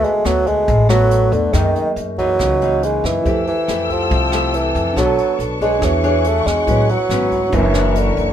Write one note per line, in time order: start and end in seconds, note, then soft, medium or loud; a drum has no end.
0.00 0.66 D3 medium
0.00 0.10 B3 medium
0.00 0.10 F#4 medium
0.00 1.49 F#4 soft
0.00 1.51 B4 soft
0.00 1.52 E5 medium
0.00 1.50 A5 soft
0.00 closed hi-hat soft
0.05 0.27 G#3 medium
0.24 0.65 D2 medium
0.24 0.49 F#3 medium
0.24 0.67 A3 soft
0.24 0.68 B3 medium
0.24 0.68 F#4 medium
0.24 cross-stick medium
0.24 closed hi-hat soft
0.46 0.89 G#3 loud
0.46 kick soft
0.46 closed hi-hat soft
0.68 1.28 A1 loud
0.68 1.52 A2 medium
0.68 kick medium
0.68 closed hi-hat soft
0.89 1.34 F#3 loud
0.89 1.50 A3 medium
0.89 1.50 B3 medium
0.89 1.51 F#4 medium
0.89 cross-stick medium
0.89 closed hi-hat soft
1.11 closed hi-hat soft
1.32 1.52 E2 medium
1.32 1.55 D3 medium
1.32 kick soft
1.32 closed hi-hat soft
1.53 1.73 F#2 medium
1.53 2.37 F#2 medium
1.53 1.91 D#3 medium
1.53 2.15 A#3 medium
1.53 2.15 D#4 soft
1.53 3.21 G#4 soft
1.53 3.22 A#4 soft
1.53 3.23 D#5 soft
1.53 kick medium
1.53 cross-stick medium
1.53 closed hi-hat soft
1.75 closed hi-hat soft
1.96 2.36 F#2 medium
1.96 closed hi-hat soft
2.18 2.58 E3 medium
2.18 2.86 F#3 loud
2.18 2.58 A#3 medium
2.18 2.58 D#4 medium
2.18 kick soft
2.18 closed hi-hat soft
2.39 3.00 C#2 loud
2.39 3.23 C#3 medium
2.39 kick medium
2.39 cross-stick medium
2.39 closed hi-hat soft
2.61 3.22 E3 medium
2.61 3.22 A#3 medium
2.61 3.23 D#4 medium
2.61 closed hi-hat soft
2.83 3.07 G#3 medium
2.83 closed hi-hat soft
3.04 3.24 F#2 medium
3.04 3.47 E3 medium
3.04 kick soft
3.04 cross-stick medium
3.04 closed hi-hat soft
3.22 3.45 F2 medium
3.22 3.53 A3 medium
3.22 4.91 E4 soft
3.22 4.92 G4 soft
3.22 4.93 A4 soft
3.22 5.80 A4 medium
3.22 4.95 G5 medium
3.22 4.95 E6 medium
3.22 kick medium
3.22 closed hi-hat soft
3.27 3.53 E4 soft
3.27 3.53 G4 medium
3.27 4.94 C5 soft
3.47 3.93 E3 medium
3.47 closed hi-hat soft
3.68 4.08 F2 medium
3.68 4.29 A3 medium
3.68 4.29 E4 medium
3.68 4.29 G4 medium
3.68 cross-stick medium
3.68 closed hi-hat soft
3.90 4.56 F3 medium
3.90 kick soft
3.90 closed hi-hat soft
4.11 4.71 C2 loud
4.11 4.95 C3 medium
4.11 kick medium
4.11 closed hi-hat soft
4.32 4.93 A3 medium
4.32 4.93 E4 medium
4.32 4.93 G4 medium
4.32 cross-stick medium
4.32 closed hi-hat soft
4.54 4.99 E3 medium
4.54 closed hi-hat soft
4.75 4.95 F2 medium
4.75 kick soft
4.75 closed hi-hat soft
4.93 5.16 B1 medium
4.93 5.80 B3 medium
4.93 5.78 D4 soft
4.93 5.57 D4 medium
4.93 6.66 D4 medium
4.93 5.80 F#4 soft
4.93 7.51 C#6 medium
4.93 kick medium
4.93 cross-stick medium
4.93 closed hi-hat soft
4.97 5.40 F#3 medium
4.97 5.57 A4 medium
4.97 5.81 A4 soft
4.97 5.58 C#5 medium
4.97 5.82 C#5 medium
5.18 closed hi-hat soft
5.39 5.79 B1 medium
5.39 closed hi-hat soft
5.61 5.86 G#3 medium
5.61 6.00 D4 medium
5.61 6.00 G#4 medium
5.61 6.00 C#5 medium
5.61 kick soft
5.61 closed hi-hat soft
5.79 6.42 E2 loud
5.79 6.65 E3 medium
5.79 6.64 D4 medium
5.79 6.65 F#4 soft
5.79 6.67 G#4 medium
5.79 7.51 F#5 medium
5.79 kick medium
5.79 cross-stick medium
5.79 closed hi-hat soft
5.83 6.29 E3 medium
5.83 6.66 G#4 soft
5.83 6.67 C#5 medium
6.03 6.64 D4 medium
6.03 6.64 G#4 medium
6.03 6.64 C#5 medium
6.03 closed hi-hat soft
6.24 6.48 A3 medium
6.24 closed hi-hat soft
6.46 6.66 E2 medium
6.46 6.92 G#3 medium
6.46 kick soft
6.46 cross-stick medium
6.46 closed hi-hat soft
6.66 6.87 A1 medium
6.66 6.95 F#3 medium
6.66 6.95 B3 soft
6.66 6.96 C#4 medium
6.66 7.50 E4 soft
6.66 7.51 F#4 soft
6.66 7.52 B4 medium
6.66 kick medium
6.66 closed hi-hat soft
6.70 7.52 B4 soft
6.70 7.54 C#5 medium
6.89 7.57 F#3 medium
6.89 closed hi-hat soft
7.09 7.50 G#1 medium
7.09 7.39 F#3 medium
7.09 7.39 B3 medium
7.09 7.39 C#4 medium
7.09 cross-stick medium
7.09 closed hi-hat soft
7.32 kick soft
7.32 closed hi-hat soft
7.50 8.13 F#1 loud
7.50 8.33 F#2 medium
7.50 7.71 E3 medium
7.50 7.71 A#3 medium
7.50 8.33 D4 medium
7.50 8.33 E4 soft
7.50 8.33 A#4 soft
7.50 kick medium
7.50 closed hi-hat soft
7.54 7.99 E3 medium
7.54 7.71 D4 medium
7.54 8.33 A#4 medium
7.54 8.33 C#5 medium
7.54 8.33 E5 medium
7.54 8.33 C#6 medium
7.74 8.33 E3 medium
7.74 8.33 A#3 medium
7.74 8.33 D4 medium
7.74 cross-stick medium
7.74 closed hi-hat soft
7.95 8.33 D3 medium
7.95 closed hi-hat soft
8.17 8.33 F#1 medium
8.17 kick soft
8.17 closed hi-hat soft